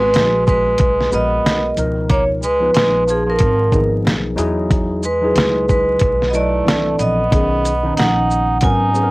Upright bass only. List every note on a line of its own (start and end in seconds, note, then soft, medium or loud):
0.00 0.11 G#1 medium
0.14 0.76 A#1 loud
0.80 1.11 B1 medium
1.12 1.43 A#1 medium
1.45 1.76 B1 medium
1.77 2.71 C#2 medium
2.74 3.37 A#1 medium
3.40 4.02 G#1 loud
4.05 4.36 B1 medium
4.38 5.32 E2 medium
5.35 5.98 C#2 loud
6.01 6.63 B1 medium
6.67 6.97 C2 medium
6.98 7.30 A#1 medium
7.32 7.94 B1 loud
7.97 8.59 A#1 medium
8.62 9.11 G#1 medium